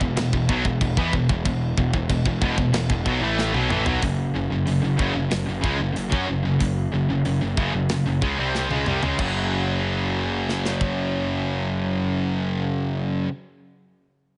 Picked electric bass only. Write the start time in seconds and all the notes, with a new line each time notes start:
0.01 E1
0.17 E1
0.33 E1
0.49 B1
0.65 E1
0.81 E1
0.97 E2
1.13 E1
1.29 E1
1.46 E1
1.78 E1
1.93 E1
2.10 E1
2.26 E1
2.42 E1
2.58 E1
2.73 E1
2.90 E1
3.06 B1
3.21 A1
3.54 B1
3.70 A1
3.86 B1
4.02 F#1
4.34 F#1
4.50 F#1
4.67 F#1
4.82 F#1
4.99 F#1
5.15 F#1
5.31 F#1
5.48 F#1
5.64 C#2
5.80 F#1
5.97 F#1
6.12 F#2
6.29 F#1
6.45 F#1
6.61 F#1
6.93 F#1
7.10 F#1
7.25 F#1
7.42 F#1
7.57 F#1
7.73 F#1
7.90 F#1
8.06 F#1
8.22 C#2
8.38 C2
8.70 C#2
8.86 C2
9.02 C#2
9.19 F#1